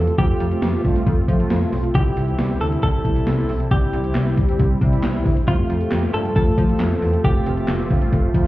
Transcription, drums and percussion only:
0.07 closed hi-hat medium
0.18 kick loud
0.18 closed hi-hat medium
0.40 closed hi-hat medium
0.51 closed hi-hat soft
0.62 snare loud
0.62 closed hi-hat medium
0.84 kick medium
0.84 open hi-hat medium
0.96 closed hi-hat medium
1.07 kick loud
1.07 closed hi-hat medium
1.28 kick medium
1.28 closed hi-hat medium
1.40 closed hi-hat medium
1.50 snare loud
1.50 closed hi-hat medium
1.73 open hi-hat medium
1.84 closed hi-hat medium
1.95 kick loud
1.95 closed hi-hat medium
2.17 closed hi-hat medium
2.28 closed hi-hat soft
2.39 snare loud
2.39 closed hi-hat medium
2.61 open hi-hat medium
2.72 closed hi-hat medium
2.83 kick medium
2.83 closed hi-hat medium
3.05 kick medium
3.05 closed hi-hat medium
3.16 closed hi-hat medium
3.27 snare loud
3.27 closed hi-hat medium
3.49 open hi-hat medium
3.60 closed hi-hat medium
3.71 kick loud
3.71 closed hi-hat medium
3.93 closed hi-hat medium
4.04 closed hi-hat soft
4.15 snare loud
4.15 clap loud
4.15 closed hi-hat medium
4.37 kick medium
4.37 closed hi-hat medium
4.49 closed hi-hat medium
4.59 kick loud
4.59 closed hi-hat medium
4.81 kick medium
4.81 closed hi-hat medium
4.93 closed hi-hat medium
5.03 snare loud
5.03 clap medium
5.03 closed hi-hat medium
5.26 kick loud
5.26 open hi-hat medium
5.37 closed hi-hat medium
5.48 kick loud
5.48 closed hi-hat medium
5.70 closed hi-hat medium
5.81 closed hi-hat soft
5.92 snare loud
5.92 clap loud
5.92 closed hi-hat medium
6.14 open hi-hat medium
6.25 closed hi-hat medium
6.36 kick loud
6.36 closed hi-hat medium
6.58 kick medium
6.58 closed hi-hat medium
6.69 closed hi-hat soft
6.80 snare loud
6.80 clap medium
6.80 closed hi-hat medium
7.02 open hi-hat medium
7.13 closed hi-hat medium
7.24 kick loud
7.24 closed hi-hat medium
7.46 closed hi-hat medium
7.57 closed hi-hat soft
7.68 snare loud
7.68 clap loud
7.68 closed hi-hat medium
7.91 kick medium
7.91 open hi-hat medium
8.02 closed hi-hat medium
8.13 kick loud
8.13 closed hi-hat medium
8.34 kick medium
8.34 closed hi-hat medium

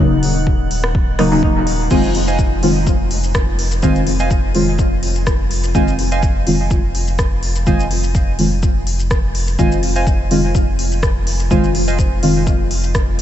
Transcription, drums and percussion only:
0.23 open hi-hat medium
0.47 kick loud
0.71 open hi-hat medium
0.84 cross-stick medium
0.95 kick loud
1.19 cross-stick medium
1.19 open hi-hat medium
1.32 open hi-hat soft
1.43 kick loud
1.67 open hi-hat medium
1.91 kick loud
1.91 crash loud
1.91 shaker medium
2.04 shaker soft
2.15 open hi-hat medium
2.28 shaker soft
2.39 kick loud
2.39 shaker medium
2.63 open hi-hat medium
2.87 kick loud
2.87 shaker medium
3.11 open hi-hat medium
3.24 shaker soft
3.35 kick loud
3.35 cross-stick loud
3.35 shaker medium
3.59 open hi-hat medium
3.72 shaker soft
3.83 kick loud
3.83 shaker medium
3.96 shaker soft
4.07 open hi-hat medium
4.20 shaker soft
4.31 kick loud
4.31 shaker medium
4.55 open hi-hat medium
4.79 kick loud
4.79 shaker medium
5.03 open hi-hat medium
5.16 shaker soft
5.27 kick loud
5.27 cross-stick medium
5.27 shaker medium
5.51 open hi-hat medium
5.64 shaker soft
5.75 kick loud
5.75 shaker medium
5.88 shaker soft
5.99 open hi-hat medium
6.12 shaker soft
6.23 kick loud
6.23 shaker medium
6.47 open hi-hat medium
6.71 kick loud
6.71 shaker medium
6.95 open hi-hat medium
7.08 shaker soft
7.19 kick loud
7.19 cross-stick medium
7.19 shaker medium
7.43 open hi-hat medium
7.56 shaker soft
7.67 kick loud
7.67 shaker medium
7.80 shaker soft
7.91 open hi-hat medium
8.04 shaker soft
8.15 kick loud
8.15 shaker medium
8.39 open hi-hat medium
8.63 kick loud
8.63 shaker medium
8.87 open hi-hat medium
9.00 shaker soft
9.11 kick loud
9.11 cross-stick medium
9.11 shaker medium
9.35 open hi-hat medium
9.48 shaker soft
9.59 kick loud
9.59 shaker medium
9.72 shaker soft
9.83 open hi-hat medium
9.96 shaker soft
10.07 kick loud
10.07 shaker medium
10.31 open hi-hat medium
10.55 kick loud
10.55 shaker medium
10.79 open hi-hat medium
10.92 shaker soft
11.03 kick loud
11.03 cross-stick medium
11.03 shaker medium
11.27 open hi-hat medium
11.40 shaker soft
11.51 kick loud
11.51 shaker medium
11.64 shaker soft
11.75 open hi-hat medium
11.88 shaker soft
11.99 kick loud
11.99 shaker medium
12.23 open hi-hat medium
12.47 kick loud
12.47 shaker medium
12.71 open hi-hat medium
12.84 shaker soft
12.95 kick loud
12.95 cross-stick medium
12.95 shaker medium
13.19 open hi-hat medium

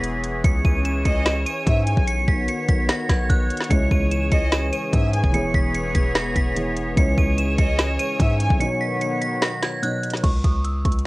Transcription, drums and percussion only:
0.04 closed hi-hat loud
0.24 closed hi-hat medium
0.44 kick loud
0.44 closed hi-hat medium
0.65 kick medium
0.85 closed hi-hat medium
1.05 kick medium
1.05 closed hi-hat medium
1.26 snare loud
1.26 closed hi-hat medium
1.46 closed hi-hat medium
1.67 kick loud
1.67 closed hi-hat medium
1.87 closed hi-hat medium
1.97 kick loud
2.07 closed hi-hat medium
2.28 kick medium
2.48 closed hi-hat medium
2.68 kick medium
2.68 closed hi-hat medium
2.89 snare loud
2.89 closed hi-hat medium
3.09 kick loud
3.09 snare medium
3.09 closed hi-hat medium
3.30 kick loud
3.30 closed hi-hat loud
3.50 closed hi-hat medium
3.57 snare medium
3.57 closed hi-hat medium
3.64 closed hi-hat medium
3.71 kick loud
3.71 closed hi-hat medium
3.91 kick medium
4.11 closed hi-hat medium
4.32 kick loud
4.32 closed hi-hat medium
4.52 snare loud
4.52 closed hi-hat medium
4.73 closed hi-hat medium
4.93 kick loud
4.93 closed hi-hat medium
5.13 closed hi-hat medium
5.24 kick loud
5.34 closed hi-hat medium
5.54 kick loud
5.75 closed hi-hat medium
5.95 kick loud
5.95 closed hi-hat medium
6.15 snare loud
6.15 closed hi-hat medium
6.36 kick loud
6.36 closed hi-hat medium
6.57 closed hi-hat loud
6.77 closed hi-hat medium
6.97 kick loud
6.97 closed hi-hat medium
7.18 kick medium
7.38 closed hi-hat medium
7.58 kick medium
7.58 closed hi-hat medium
7.79 snare loud
7.79 closed hi-hat medium
7.99 closed hi-hat medium
8.20 kick loud
8.20 closed hi-hat loud
8.40 closed hi-hat medium
8.50 kick loud
8.61 closed hi-hat medium
9.01 closed hi-hat medium
9.22 closed hi-hat medium
9.42 snare loud
9.42 closed hi-hat medium
9.62 snare medium
9.62 closed hi-hat medium
9.83 closed hi-hat loud
10.03 closed hi-hat medium
10.10 snare medium
10.10 closed hi-hat medium
10.17 closed hi-hat medium
10.24 kick loud
10.24 closed hi-hat medium
10.24 crash loud
10.44 kick medium
10.44 closed hi-hat medium
10.64 closed hi-hat medium
10.85 kick medium
10.85 closed hi-hat medium
10.92 closed hi-hat medium
10.99 closed hi-hat soft

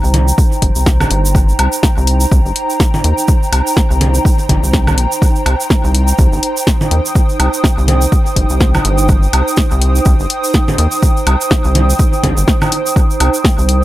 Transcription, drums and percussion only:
0.04 shaker soft
0.14 closed hi-hat loud
0.14 low conga medium
0.28 shaker medium
0.38 kick loud
0.38 shaker medium
0.52 shaker soft
0.62 kick medium
0.62 closed hi-hat medium
0.75 shaker medium
0.86 kick loud
0.86 snare loud
0.86 shaker medium
1.00 low conga medium
1.00 low woodblock medium
1.00 shaker soft
1.11 closed hi-hat loud
1.25 shaker medium
1.35 kick loud
1.35 shaker medium
1.49 shaker soft
1.59 closed hi-hat medium
1.59 low woodblock medium
1.72 shaker medium
1.83 kick loud
1.83 snare loud
1.83 shaker medium
1.98 shaker soft
2.07 closed hi-hat loud
2.20 shaker medium
2.32 kick loud
2.32 shaker medium
2.46 shaker soft
2.56 closed hi-hat loud
2.70 shaker medium
2.80 kick loud
2.80 snare loud
2.80 shaker medium
2.94 low conga medium
2.94 shaker soft
3.04 closed hi-hat loud
3.18 shaker medium
3.28 kick loud
3.28 shaker medium
3.43 shaker soft
3.53 closed hi-hat medium
3.53 low woodblock medium
3.67 shaker medium
3.77 kick loud
3.77 snare medium
3.77 shaker medium
3.91 shaker soft
4.01 closed hi-hat loud
4.01 low conga medium
4.14 shaker medium
4.25 kick loud
4.25 shaker medium
4.39 shaker soft
4.49 kick medium
4.49 closed hi-hat medium
4.49 low conga medium
4.64 shaker medium
4.73 kick loud
4.73 snare medium
4.73 shaker medium
4.87 low conga medium
4.87 low woodblock medium
4.87 shaker soft
4.98 closed hi-hat loud
5.12 shaker medium
5.22 kick loud
5.22 shaker medium
5.35 shaker soft
5.46 closed hi-hat medium
5.46 low woodblock medium
5.60 shaker medium
5.70 kick loud
5.70 snare medium
5.70 shaker medium
5.84 shaker soft
5.95 closed hi-hat medium
6.08 shaker medium
6.18 kick loud
6.18 shaker medium
6.33 shaker soft
6.43 closed hi-hat medium
6.57 shaker medium
6.67 kick loud
6.67 snare medium
6.67 shaker medium
6.81 low conga medium
6.81 shaker soft
6.91 closed hi-hat medium
7.06 shaker medium
7.15 kick loud
7.15 shaker medium
7.29 shaker soft
7.40 closed hi-hat medium
7.40 low woodblock medium
7.54 shaker medium
7.64 kick loud
7.64 snare medium
7.64 shaker medium
7.78 shaker soft
7.88 closed hi-hat medium
7.88 low conga medium
8.01 shaker medium
8.12 kick loud
8.12 shaker medium
8.26 shaker soft
8.36 kick medium
8.36 closed hi-hat medium
8.49 shaker medium
8.60 kick loud
8.60 snare medium
8.60 shaker medium
8.74 low conga medium
8.74 low woodblock medium
8.74 shaker soft
8.85 closed hi-hat medium
8.98 shaker medium
9.08 kick loud
9.08 shaker medium
9.23 shaker soft
9.33 closed hi-hat medium
9.33 low woodblock medium
9.48 shaker medium
9.57 kick loud
9.57 snare medium
9.57 shaker medium
9.71 shaker soft
9.82 closed hi-hat medium
9.95 shaker medium
10.05 kick loud
10.05 shaker medium
10.20 shaker soft
10.30 closed hi-hat medium
10.44 shaker medium
10.54 kick loud
10.54 snare medium
10.54 shaker medium
10.68 low conga medium
10.68 shaker soft
10.78 closed hi-hat medium
10.91 shaker medium
11.03 kick loud
11.03 shaker medium
11.17 shaker soft
11.27 closed hi-hat medium
11.27 low woodblock medium
11.41 shaker medium
11.51 kick loud
11.51 snare loud
11.51 shaker medium
11.64 shaker soft
11.75 closed hi-hat medium
11.75 low conga medium
11.90 shaker medium
11.99 kick loud
11.99 shaker medium
12.13 shaker soft
12.24 kick medium
12.24 closed hi-hat medium
12.24 low conga medium
12.37 shaker medium
12.48 kick loud
12.48 snare medium
12.48 shaker medium
12.62 low conga medium
12.62 low woodblock medium
12.62 shaker soft
12.72 closed hi-hat medium
12.86 shaker medium
12.96 kick loud
12.96 shaker medium
13.10 shaker soft
13.20 closed hi-hat medium
13.20 low woodblock medium
13.34 shaker medium
13.45 kick loud
13.45 snare loud
13.45 shaker medium
13.59 shaker soft
13.69 closed hi-hat medium

